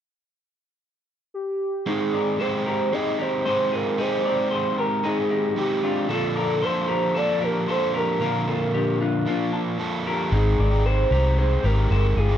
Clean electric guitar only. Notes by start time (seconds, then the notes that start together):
1.87 D#4 G#4
2.13 A#4 D5
2.40 G#4 C5
2.66 G4 A#4
2.92 D#4 G#4
3.19 G4 A#4
3.45 G#4 C5
3.72 F4 G#4
3.98 D#4 G#4
4.25 A#4 D5
4.51 G#4 C5
4.78 G4 A#4
5.04 D#4 G#4
5.30 D#4 G4
5.83 D4 F4
6.10 F4 A4
6.36 A#4 D5
6.62 A4 C5
6.88 G4 A#4
7.15 F4 A4
7.42 G4 A#4
7.68 A4 C5
7.94 G4 A#4
8.21 F4 A#4
8.48 F4 A4
8.74 D4 G4
9.01 D4 F4
9.27 D4 F4
9.53 F4 A5
10.07 G4 A#4
10.33 D#4 G#4
10.60 A#4 D5
10.86 G#4 C5
11.12 G4 A#4
11.39 D#4 G#4
11.64 G4 A#4
11.91 G#4 C5
12.17 F4 G#4